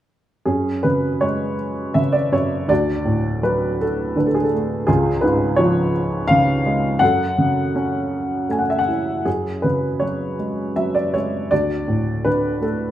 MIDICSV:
0, 0, Header, 1, 2, 480
1, 0, Start_track
1, 0, Key_signature, 3, "minor"
1, 0, Tempo, 741656
1, 304, Time_signature, 3, 2, 24, 8
1, 2697, Tempo, 715137
1, 5097, Tempo, 756620
1, 7017, Tempo, 734394
1, 8416, End_track
2, 0, Start_track
2, 0, Title_t, "Upright piano"
2, 0, Program_c, 0, 0
2, 294, Note_on_c, 0, 68, 58
2, 296, Note_on_c, 0, 42, 43
2, 308, Note_on_c, 0, 61, 46
2, 431, Control_c, 0, 64, 127
2, 537, Note_on_c, 0, 71, 63
2, 546, Note_on_c, 0, 49, 41
2, 551, Note_off_c, 0, 68, 0
2, 782, Note_on_c, 0, 73, 67
2, 785, Note_on_c, 0, 56, 44
2, 792, Note_off_c, 0, 71, 0
2, 1007, Note_off_c, 0, 61, 0
2, 1252, Note_off_c, 0, 49, 0
2, 1258, Note_on_c, 0, 76, 68
2, 1261, Note_on_c, 0, 49, 49
2, 1281, Note_off_c, 0, 73, 0
2, 1375, Note_on_c, 0, 74, 67
2, 1388, Note_off_c, 0, 76, 0
2, 1491, Note_off_c, 0, 42, 0
2, 1501, Note_on_c, 0, 42, 40
2, 1506, Note_off_c, 0, 74, 0
2, 1506, Note_on_c, 0, 73, 67
2, 1720, Note_off_c, 0, 56, 0
2, 1729, Note_off_c, 0, 49, 0
2, 1735, Note_on_c, 0, 38, 52
2, 1737, Note_off_c, 0, 42, 0
2, 1741, Note_on_c, 0, 74, 77
2, 1751, Note_on_c, 0, 66, 56
2, 1754, Note_off_c, 0, 73, 0
2, 1756, Control_c, 0, 64, 0
2, 1858, Control_c, 0, 64, 127
2, 1975, Note_on_c, 0, 45, 46
2, 2196, Note_off_c, 0, 74, 0
2, 2219, Note_on_c, 0, 54, 44
2, 2222, Note_on_c, 0, 71, 63
2, 2438, Note_off_c, 0, 66, 0
2, 2467, Note_on_c, 0, 69, 60
2, 2468, Note_off_c, 0, 71, 0
2, 2690, Note_off_c, 0, 69, 0
2, 2692, Note_on_c, 0, 50, 53
2, 2701, Note_on_c, 0, 71, 51
2, 2762, Note_off_c, 0, 71, 0
2, 2763, Note_on_c, 0, 69, 53
2, 2816, Note_on_c, 0, 68, 58
2, 2823, Note_off_c, 0, 69, 0
2, 2878, Note_off_c, 0, 68, 0
2, 2879, Note_on_c, 0, 69, 55
2, 2907, Note_off_c, 0, 45, 0
2, 2938, Note_off_c, 0, 69, 0
2, 2945, Note_on_c, 0, 57, 43
2, 3141, Note_off_c, 0, 38, 0
2, 3145, Note_off_c, 0, 54, 0
2, 3157, Note_off_c, 0, 50, 0
2, 3167, Note_on_c, 0, 68, 72
2, 3171, Note_off_c, 0, 57, 0
2, 3177, Note_on_c, 0, 37, 57
2, 3179, Note_on_c, 0, 65, 51
2, 3184, Control_c, 0, 64, 0
2, 3317, Control_c, 0, 64, 127
2, 3397, Note_on_c, 0, 71, 64
2, 3413, Note_off_c, 0, 68, 0
2, 3415, Note_on_c, 0, 44, 54
2, 3635, Note_on_c, 0, 73, 75
2, 3651, Note_off_c, 0, 71, 0
2, 3651, Note_on_c, 0, 53, 54
2, 3865, Note_off_c, 0, 65, 0
2, 4093, Note_off_c, 0, 73, 0
2, 4112, Note_on_c, 0, 77, 92
2, 4133, Note_on_c, 0, 49, 60
2, 4340, Note_off_c, 0, 44, 0
2, 4371, Note_on_c, 0, 56, 47
2, 4581, Note_off_c, 0, 53, 0
2, 4582, Note_off_c, 0, 37, 0
2, 4593, Note_on_c, 0, 78, 88
2, 4597, Note_off_c, 0, 49, 0
2, 4604, Note_off_c, 0, 56, 0
2, 4608, Note_on_c, 0, 42, 56
2, 4615, Note_off_c, 0, 77, 0
2, 4615, Control_c, 0, 64, 0
2, 4622, Note_on_c, 0, 69, 59
2, 4737, Control_c, 0, 64, 127
2, 4856, Note_on_c, 0, 49, 47
2, 5106, Note_on_c, 0, 61, 49
2, 5553, Note_off_c, 0, 78, 0
2, 5566, Note_off_c, 0, 69, 0
2, 5571, Note_on_c, 0, 57, 45
2, 5585, Note_on_c, 0, 80, 56
2, 5632, Note_on_c, 0, 78, 53
2, 5645, Note_off_c, 0, 80, 0
2, 5698, Note_off_c, 0, 78, 0
2, 5704, Note_on_c, 0, 76, 62
2, 5759, Note_on_c, 0, 78, 65
2, 5764, Note_off_c, 0, 76, 0
2, 5799, Note_off_c, 0, 49, 0
2, 5820, Note_on_c, 0, 64, 37
2, 5821, Note_off_c, 0, 78, 0
2, 6037, Note_off_c, 0, 42, 0
2, 6041, Note_off_c, 0, 61, 0
2, 6045, Note_off_c, 0, 57, 0
2, 6054, Note_off_c, 0, 64, 0
2, 6055, Note_on_c, 0, 68, 52
2, 6056, Note_on_c, 0, 42, 39
2, 6066, Note_on_c, 0, 61, 36
2, 6071, Control_c, 0, 64, 0
2, 6177, Control_c, 0, 64, 127
2, 6289, Note_on_c, 0, 71, 52
2, 6302, Note_on_c, 0, 49, 34
2, 6303, Note_off_c, 0, 68, 0
2, 6527, Note_on_c, 0, 73, 59
2, 6541, Note_off_c, 0, 71, 0
2, 6541, Note_on_c, 0, 54, 39
2, 6755, Note_off_c, 0, 61, 0
2, 6778, Note_on_c, 0, 56, 33
2, 6987, Note_off_c, 0, 73, 0
2, 7004, Note_off_c, 0, 54, 0
2, 7012, Note_on_c, 0, 76, 65
2, 7014, Note_on_c, 0, 54, 44
2, 7129, Note_off_c, 0, 76, 0
2, 7133, Note_on_c, 0, 74, 60
2, 7237, Note_off_c, 0, 49, 0
2, 7257, Note_on_c, 0, 73, 59
2, 7262, Note_off_c, 0, 74, 0
2, 7264, Note_off_c, 0, 56, 0
2, 7274, Note_on_c, 0, 56, 33
2, 7473, Note_off_c, 0, 42, 0
2, 7486, Note_off_c, 0, 54, 0
2, 7500, Note_on_c, 0, 74, 75
2, 7502, Note_off_c, 0, 56, 0
2, 7505, Note_on_c, 0, 38, 41
2, 7508, Note_off_c, 0, 73, 0
2, 7510, Note_on_c, 0, 66, 49
2, 7512, Control_c, 0, 64, 0
2, 7611, Control_c, 0, 64, 127
2, 7742, Note_on_c, 0, 45, 40
2, 7982, Note_on_c, 0, 71, 62
2, 7987, Note_on_c, 0, 50, 41
2, 7993, Note_off_c, 0, 74, 0
2, 8196, Note_off_c, 0, 66, 0
2, 8222, Note_on_c, 0, 57, 40
2, 8227, Note_off_c, 0, 71, 0
2, 8229, Note_on_c, 0, 69, 57
2, 8416, Note_off_c, 0, 38, 0
2, 8416, Note_off_c, 0, 45, 0
2, 8416, Note_off_c, 0, 50, 0
2, 8416, Note_off_c, 0, 57, 0
2, 8416, Note_off_c, 0, 69, 0
2, 8416, End_track
0, 0, End_of_file